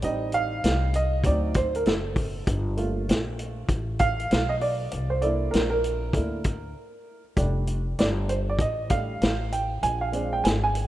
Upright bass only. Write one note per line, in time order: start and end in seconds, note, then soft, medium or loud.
0.02 0.61 A1 medium
0.64 1.22 C2 medium
1.24 1.83 D2 loud
1.86 2.44 F#1 medium
2.47 3.06 G1 medium
3.09 3.67 A#1 medium
3.69 4.27 A1 loud
4.31 4.89 B1 medium
4.93 5.51 C2 medium
5.54 6.12 A#1 loud
6.14 6.72 D2 medium
7.37 7.95 F1 medium
7.99 8.57 G1 medium
8.59 9.18 A1 medium
9.21 9.79 A1 loud
9.83 10.41 A#1 medium
10.44 10.87 G#1 medium